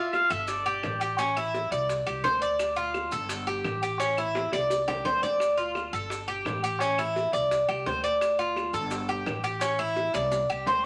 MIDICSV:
0, 0, Header, 1, 6, 480
1, 0, Start_track
1, 0, Key_signature, -1, "minor"
1, 0, Tempo, 351288
1, 1619, Time_signature, 4, 2, 24, 8
1, 14834, End_track
2, 0, Start_track
2, 0, Title_t, "Flute"
2, 0, Program_c, 0, 73
2, 14578, Note_on_c, 0, 84, 106
2, 14833, Note_off_c, 0, 84, 0
2, 14834, End_track
3, 0, Start_track
3, 0, Title_t, "Trumpet"
3, 0, Program_c, 1, 56
3, 0, Note_on_c, 1, 76, 93
3, 181, Note_on_c, 1, 77, 102
3, 201, Note_off_c, 1, 76, 0
3, 416, Note_on_c, 1, 76, 93
3, 436, Note_off_c, 1, 77, 0
3, 646, Note_off_c, 1, 76, 0
3, 654, Note_on_c, 1, 74, 83
3, 1563, Note_off_c, 1, 74, 0
3, 14834, End_track
4, 0, Start_track
4, 0, Title_t, "Cuban tres"
4, 0, Program_c, 2, 25
4, 0, Note_on_c, 2, 65, 75
4, 407, Note_off_c, 2, 65, 0
4, 416, Note_on_c, 2, 69, 78
4, 883, Note_off_c, 2, 69, 0
4, 900, Note_on_c, 2, 67, 79
4, 1366, Note_off_c, 2, 67, 0
4, 1381, Note_on_c, 2, 67, 78
4, 1613, Note_off_c, 2, 67, 0
4, 1621, Note_on_c, 2, 61, 85
4, 1853, Note_off_c, 2, 61, 0
4, 1870, Note_on_c, 2, 64, 78
4, 2331, Note_off_c, 2, 64, 0
4, 2348, Note_on_c, 2, 74, 74
4, 2811, Note_off_c, 2, 74, 0
4, 2822, Note_on_c, 2, 67, 74
4, 3055, Note_off_c, 2, 67, 0
4, 3060, Note_on_c, 2, 72, 75
4, 3294, Note_off_c, 2, 72, 0
4, 3302, Note_on_c, 2, 74, 87
4, 3768, Note_off_c, 2, 74, 0
4, 3777, Note_on_c, 2, 65, 81
4, 4246, Note_off_c, 2, 65, 0
4, 4263, Note_on_c, 2, 69, 76
4, 4730, Note_off_c, 2, 69, 0
4, 4741, Note_on_c, 2, 67, 75
4, 5208, Note_off_c, 2, 67, 0
4, 5230, Note_on_c, 2, 67, 84
4, 5460, Note_off_c, 2, 67, 0
4, 5462, Note_on_c, 2, 61, 78
4, 5696, Note_off_c, 2, 61, 0
4, 5711, Note_on_c, 2, 64, 80
4, 6174, Note_off_c, 2, 64, 0
4, 6190, Note_on_c, 2, 74, 81
4, 6653, Note_off_c, 2, 74, 0
4, 6665, Note_on_c, 2, 67, 80
4, 6898, Note_off_c, 2, 67, 0
4, 6901, Note_on_c, 2, 72, 73
4, 7136, Note_off_c, 2, 72, 0
4, 7145, Note_on_c, 2, 74, 81
4, 7611, Note_off_c, 2, 74, 0
4, 7618, Note_on_c, 2, 65, 76
4, 8087, Note_off_c, 2, 65, 0
4, 8103, Note_on_c, 2, 69, 73
4, 8570, Note_off_c, 2, 69, 0
4, 8579, Note_on_c, 2, 67, 78
4, 9047, Note_off_c, 2, 67, 0
4, 9069, Note_on_c, 2, 67, 80
4, 9299, Note_off_c, 2, 67, 0
4, 9302, Note_on_c, 2, 61, 82
4, 9536, Note_off_c, 2, 61, 0
4, 9548, Note_on_c, 2, 64, 79
4, 10011, Note_off_c, 2, 64, 0
4, 10018, Note_on_c, 2, 74, 80
4, 10486, Note_off_c, 2, 74, 0
4, 10501, Note_on_c, 2, 67, 76
4, 10734, Note_off_c, 2, 67, 0
4, 10745, Note_on_c, 2, 72, 69
4, 10975, Note_off_c, 2, 72, 0
4, 10981, Note_on_c, 2, 74, 84
4, 11447, Note_off_c, 2, 74, 0
4, 11462, Note_on_c, 2, 65, 85
4, 11927, Note_off_c, 2, 65, 0
4, 11940, Note_on_c, 2, 69, 80
4, 12406, Note_off_c, 2, 69, 0
4, 12418, Note_on_c, 2, 67, 77
4, 12880, Note_off_c, 2, 67, 0
4, 12897, Note_on_c, 2, 67, 85
4, 13130, Note_off_c, 2, 67, 0
4, 13134, Note_on_c, 2, 61, 87
4, 13369, Note_off_c, 2, 61, 0
4, 13376, Note_on_c, 2, 64, 82
4, 13842, Note_off_c, 2, 64, 0
4, 13862, Note_on_c, 2, 74, 76
4, 14325, Note_off_c, 2, 74, 0
4, 14342, Note_on_c, 2, 67, 79
4, 14572, Note_off_c, 2, 67, 0
4, 14581, Note_on_c, 2, 72, 74
4, 14811, Note_off_c, 2, 72, 0
4, 14834, End_track
5, 0, Start_track
5, 0, Title_t, "Upright bass"
5, 0, Program_c, 3, 32
5, 416, Note_on_c, 3, 31, 99
5, 1088, Note_off_c, 3, 31, 0
5, 1139, Note_on_c, 3, 33, 94
5, 2262, Note_off_c, 3, 33, 0
5, 2340, Note_on_c, 3, 36, 104
5, 2787, Note_off_c, 3, 36, 0
5, 2818, Note_on_c, 3, 36, 79
5, 3043, Note_off_c, 3, 36, 0
5, 3060, Note_on_c, 3, 38, 85
5, 4184, Note_off_c, 3, 38, 0
5, 4259, Note_on_c, 3, 31, 96
5, 4931, Note_off_c, 3, 31, 0
5, 4975, Note_on_c, 3, 33, 96
5, 6102, Note_off_c, 3, 33, 0
5, 6187, Note_on_c, 3, 36, 99
5, 6856, Note_off_c, 3, 36, 0
5, 6896, Note_on_c, 3, 38, 91
5, 8022, Note_off_c, 3, 38, 0
5, 8102, Note_on_c, 3, 31, 96
5, 8773, Note_off_c, 3, 31, 0
5, 8819, Note_on_c, 3, 33, 93
5, 9942, Note_off_c, 3, 33, 0
5, 10012, Note_on_c, 3, 36, 97
5, 10463, Note_off_c, 3, 36, 0
5, 10498, Note_on_c, 3, 36, 76
5, 10723, Note_off_c, 3, 36, 0
5, 10743, Note_on_c, 3, 38, 99
5, 11862, Note_off_c, 3, 38, 0
5, 11932, Note_on_c, 3, 31, 104
5, 12605, Note_off_c, 3, 31, 0
5, 12662, Note_on_c, 3, 33, 96
5, 13780, Note_off_c, 3, 33, 0
5, 13862, Note_on_c, 3, 36, 103
5, 14305, Note_off_c, 3, 36, 0
5, 14342, Note_on_c, 3, 36, 76
5, 14562, Note_off_c, 3, 36, 0
5, 14570, Note_on_c, 3, 38, 89
5, 14834, Note_off_c, 3, 38, 0
5, 14834, End_track
6, 0, Start_track
6, 0, Title_t, "Drums"
6, 181, Note_on_c, 9, 60, 60
6, 183, Note_on_c, 9, 70, 29
6, 186, Note_on_c, 9, 75, 66
6, 318, Note_off_c, 9, 60, 0
6, 319, Note_off_c, 9, 70, 0
6, 322, Note_off_c, 9, 75, 0
6, 411, Note_on_c, 9, 70, 77
6, 548, Note_off_c, 9, 70, 0
6, 649, Note_on_c, 9, 70, 93
6, 659, Note_on_c, 9, 60, 73
6, 786, Note_off_c, 9, 70, 0
6, 796, Note_off_c, 9, 60, 0
6, 898, Note_on_c, 9, 70, 31
6, 1035, Note_off_c, 9, 70, 0
6, 1135, Note_on_c, 9, 75, 63
6, 1141, Note_on_c, 9, 60, 66
6, 1141, Note_on_c, 9, 61, 79
6, 1142, Note_on_c, 9, 70, 30
6, 1272, Note_off_c, 9, 75, 0
6, 1278, Note_off_c, 9, 60, 0
6, 1278, Note_off_c, 9, 61, 0
6, 1279, Note_off_c, 9, 70, 0
6, 1377, Note_on_c, 9, 70, 73
6, 1513, Note_off_c, 9, 70, 0
6, 1616, Note_on_c, 9, 70, 93
6, 1628, Note_on_c, 9, 60, 76
6, 1753, Note_off_c, 9, 70, 0
6, 1765, Note_off_c, 9, 60, 0
6, 1866, Note_on_c, 9, 75, 72
6, 1868, Note_on_c, 9, 70, 32
6, 1871, Note_on_c, 9, 60, 37
6, 2003, Note_off_c, 9, 75, 0
6, 2005, Note_off_c, 9, 70, 0
6, 2008, Note_off_c, 9, 60, 0
6, 2108, Note_on_c, 9, 70, 29
6, 2109, Note_on_c, 9, 60, 65
6, 2245, Note_off_c, 9, 70, 0
6, 2246, Note_off_c, 9, 60, 0
6, 2348, Note_on_c, 9, 60, 33
6, 2349, Note_on_c, 9, 70, 72
6, 2484, Note_off_c, 9, 60, 0
6, 2486, Note_off_c, 9, 70, 0
6, 2588, Note_on_c, 9, 70, 93
6, 2589, Note_on_c, 9, 60, 72
6, 2725, Note_off_c, 9, 70, 0
6, 2726, Note_off_c, 9, 60, 0
6, 2823, Note_on_c, 9, 75, 64
6, 2829, Note_on_c, 9, 70, 29
6, 2831, Note_on_c, 9, 60, 38
6, 2960, Note_off_c, 9, 75, 0
6, 2965, Note_off_c, 9, 70, 0
6, 2967, Note_off_c, 9, 60, 0
6, 3066, Note_on_c, 9, 60, 72
6, 3066, Note_on_c, 9, 61, 81
6, 3069, Note_on_c, 9, 70, 30
6, 3203, Note_off_c, 9, 60, 0
6, 3203, Note_off_c, 9, 61, 0
6, 3206, Note_off_c, 9, 70, 0
6, 3305, Note_on_c, 9, 70, 73
6, 3442, Note_off_c, 9, 70, 0
6, 3542, Note_on_c, 9, 70, 89
6, 3543, Note_on_c, 9, 75, 65
6, 3546, Note_on_c, 9, 60, 75
6, 3678, Note_off_c, 9, 70, 0
6, 3680, Note_off_c, 9, 75, 0
6, 3683, Note_off_c, 9, 60, 0
6, 3781, Note_on_c, 9, 70, 32
6, 3918, Note_off_c, 9, 70, 0
6, 4019, Note_on_c, 9, 70, 30
6, 4020, Note_on_c, 9, 75, 69
6, 4022, Note_on_c, 9, 60, 56
6, 4156, Note_off_c, 9, 70, 0
6, 4156, Note_off_c, 9, 75, 0
6, 4158, Note_off_c, 9, 60, 0
6, 4256, Note_on_c, 9, 70, 77
6, 4393, Note_off_c, 9, 70, 0
6, 4500, Note_on_c, 9, 60, 80
6, 4500, Note_on_c, 9, 70, 92
6, 4637, Note_off_c, 9, 60, 0
6, 4637, Note_off_c, 9, 70, 0
6, 4748, Note_on_c, 9, 70, 33
6, 4885, Note_off_c, 9, 70, 0
6, 4980, Note_on_c, 9, 60, 67
6, 4980, Note_on_c, 9, 61, 81
6, 4983, Note_on_c, 9, 75, 68
6, 4987, Note_on_c, 9, 70, 29
6, 5117, Note_off_c, 9, 60, 0
6, 5117, Note_off_c, 9, 61, 0
6, 5120, Note_off_c, 9, 75, 0
6, 5123, Note_off_c, 9, 70, 0
6, 5228, Note_on_c, 9, 70, 78
6, 5365, Note_off_c, 9, 70, 0
6, 5460, Note_on_c, 9, 60, 73
6, 5468, Note_on_c, 9, 70, 94
6, 5597, Note_off_c, 9, 60, 0
6, 5605, Note_off_c, 9, 70, 0
6, 5704, Note_on_c, 9, 75, 69
6, 5708, Note_on_c, 9, 60, 39
6, 5713, Note_on_c, 9, 70, 32
6, 5840, Note_off_c, 9, 75, 0
6, 5844, Note_off_c, 9, 60, 0
6, 5849, Note_off_c, 9, 70, 0
6, 5945, Note_on_c, 9, 60, 97
6, 5957, Note_on_c, 9, 70, 30
6, 6081, Note_off_c, 9, 60, 0
6, 6094, Note_off_c, 9, 70, 0
6, 6184, Note_on_c, 9, 60, 85
6, 6196, Note_on_c, 9, 70, 72
6, 6320, Note_off_c, 9, 60, 0
6, 6332, Note_off_c, 9, 70, 0
6, 6424, Note_on_c, 9, 60, 77
6, 6432, Note_on_c, 9, 70, 89
6, 6561, Note_off_c, 9, 60, 0
6, 6569, Note_off_c, 9, 70, 0
6, 6664, Note_on_c, 9, 61, 99
6, 6667, Note_on_c, 9, 75, 64
6, 6676, Note_on_c, 9, 70, 29
6, 6801, Note_off_c, 9, 61, 0
6, 6803, Note_off_c, 9, 75, 0
6, 6812, Note_off_c, 9, 70, 0
6, 6907, Note_on_c, 9, 61, 96
6, 6916, Note_on_c, 9, 70, 30
6, 7044, Note_off_c, 9, 61, 0
6, 7053, Note_off_c, 9, 70, 0
6, 7149, Note_on_c, 9, 61, 76
6, 7150, Note_on_c, 9, 70, 75
6, 7286, Note_off_c, 9, 61, 0
6, 7286, Note_off_c, 9, 70, 0
6, 7379, Note_on_c, 9, 75, 69
6, 7381, Note_on_c, 9, 60, 75
6, 7396, Note_on_c, 9, 70, 99
6, 7516, Note_off_c, 9, 75, 0
6, 7518, Note_off_c, 9, 60, 0
6, 7533, Note_off_c, 9, 70, 0
6, 7632, Note_on_c, 9, 70, 31
6, 7768, Note_off_c, 9, 70, 0
6, 7858, Note_on_c, 9, 60, 56
6, 7858, Note_on_c, 9, 75, 71
6, 7876, Note_on_c, 9, 70, 30
6, 7994, Note_off_c, 9, 60, 0
6, 7995, Note_off_c, 9, 75, 0
6, 8013, Note_off_c, 9, 70, 0
6, 8118, Note_on_c, 9, 70, 73
6, 8254, Note_off_c, 9, 70, 0
6, 8338, Note_on_c, 9, 60, 75
6, 8356, Note_on_c, 9, 70, 95
6, 8475, Note_off_c, 9, 60, 0
6, 8493, Note_off_c, 9, 70, 0
6, 8600, Note_on_c, 9, 70, 30
6, 8736, Note_off_c, 9, 70, 0
6, 8814, Note_on_c, 9, 75, 65
6, 8827, Note_on_c, 9, 60, 70
6, 8827, Note_on_c, 9, 61, 84
6, 8837, Note_on_c, 9, 70, 30
6, 8951, Note_off_c, 9, 75, 0
6, 8964, Note_off_c, 9, 60, 0
6, 8964, Note_off_c, 9, 61, 0
6, 8974, Note_off_c, 9, 70, 0
6, 9071, Note_on_c, 9, 70, 79
6, 9207, Note_off_c, 9, 70, 0
6, 9295, Note_on_c, 9, 60, 72
6, 9312, Note_on_c, 9, 70, 93
6, 9432, Note_off_c, 9, 60, 0
6, 9448, Note_off_c, 9, 70, 0
6, 9539, Note_on_c, 9, 75, 67
6, 9544, Note_on_c, 9, 60, 37
6, 9551, Note_on_c, 9, 70, 33
6, 9676, Note_off_c, 9, 75, 0
6, 9681, Note_off_c, 9, 60, 0
6, 9688, Note_off_c, 9, 70, 0
6, 9786, Note_on_c, 9, 60, 63
6, 9792, Note_on_c, 9, 70, 29
6, 9923, Note_off_c, 9, 60, 0
6, 9929, Note_off_c, 9, 70, 0
6, 10028, Note_on_c, 9, 60, 33
6, 10031, Note_on_c, 9, 70, 76
6, 10164, Note_off_c, 9, 60, 0
6, 10167, Note_off_c, 9, 70, 0
6, 10267, Note_on_c, 9, 60, 78
6, 10269, Note_on_c, 9, 70, 94
6, 10404, Note_off_c, 9, 60, 0
6, 10406, Note_off_c, 9, 70, 0
6, 10504, Note_on_c, 9, 75, 71
6, 10506, Note_on_c, 9, 70, 32
6, 10509, Note_on_c, 9, 60, 40
6, 10640, Note_off_c, 9, 75, 0
6, 10642, Note_off_c, 9, 70, 0
6, 10646, Note_off_c, 9, 60, 0
6, 10745, Note_on_c, 9, 70, 29
6, 10746, Note_on_c, 9, 60, 70
6, 10746, Note_on_c, 9, 61, 80
6, 10881, Note_off_c, 9, 70, 0
6, 10883, Note_off_c, 9, 60, 0
6, 10883, Note_off_c, 9, 61, 0
6, 10989, Note_on_c, 9, 70, 76
6, 11126, Note_off_c, 9, 70, 0
6, 11223, Note_on_c, 9, 60, 70
6, 11227, Note_on_c, 9, 75, 73
6, 11228, Note_on_c, 9, 70, 94
6, 11359, Note_off_c, 9, 60, 0
6, 11364, Note_off_c, 9, 75, 0
6, 11365, Note_off_c, 9, 70, 0
6, 11469, Note_on_c, 9, 70, 33
6, 11605, Note_off_c, 9, 70, 0
6, 11701, Note_on_c, 9, 60, 65
6, 11705, Note_on_c, 9, 70, 28
6, 11712, Note_on_c, 9, 75, 70
6, 11838, Note_off_c, 9, 60, 0
6, 11841, Note_off_c, 9, 70, 0
6, 11849, Note_off_c, 9, 75, 0
6, 11937, Note_on_c, 9, 70, 74
6, 12074, Note_off_c, 9, 70, 0
6, 12169, Note_on_c, 9, 70, 90
6, 12178, Note_on_c, 9, 60, 79
6, 12306, Note_off_c, 9, 70, 0
6, 12314, Note_off_c, 9, 60, 0
6, 12408, Note_on_c, 9, 70, 31
6, 12545, Note_off_c, 9, 70, 0
6, 12653, Note_on_c, 9, 70, 30
6, 12659, Note_on_c, 9, 60, 71
6, 12659, Note_on_c, 9, 61, 78
6, 12671, Note_on_c, 9, 75, 73
6, 12790, Note_off_c, 9, 70, 0
6, 12796, Note_off_c, 9, 60, 0
6, 12796, Note_off_c, 9, 61, 0
6, 12808, Note_off_c, 9, 75, 0
6, 12897, Note_on_c, 9, 70, 76
6, 13033, Note_off_c, 9, 70, 0
6, 13130, Note_on_c, 9, 70, 94
6, 13135, Note_on_c, 9, 60, 73
6, 13267, Note_off_c, 9, 70, 0
6, 13271, Note_off_c, 9, 60, 0
6, 13366, Note_on_c, 9, 70, 30
6, 13382, Note_on_c, 9, 60, 37
6, 13384, Note_on_c, 9, 75, 69
6, 13503, Note_off_c, 9, 70, 0
6, 13518, Note_off_c, 9, 60, 0
6, 13520, Note_off_c, 9, 75, 0
6, 13616, Note_on_c, 9, 60, 63
6, 13618, Note_on_c, 9, 70, 30
6, 13752, Note_off_c, 9, 60, 0
6, 13754, Note_off_c, 9, 70, 0
6, 13854, Note_on_c, 9, 70, 71
6, 13855, Note_on_c, 9, 60, 89
6, 13991, Note_off_c, 9, 70, 0
6, 13992, Note_off_c, 9, 60, 0
6, 14094, Note_on_c, 9, 60, 90
6, 14096, Note_on_c, 9, 70, 90
6, 14231, Note_off_c, 9, 60, 0
6, 14233, Note_off_c, 9, 70, 0
6, 14339, Note_on_c, 9, 70, 29
6, 14345, Note_on_c, 9, 75, 66
6, 14476, Note_off_c, 9, 70, 0
6, 14481, Note_off_c, 9, 75, 0
6, 14573, Note_on_c, 9, 61, 91
6, 14584, Note_on_c, 9, 70, 31
6, 14709, Note_off_c, 9, 61, 0
6, 14721, Note_off_c, 9, 70, 0
6, 14834, End_track
0, 0, End_of_file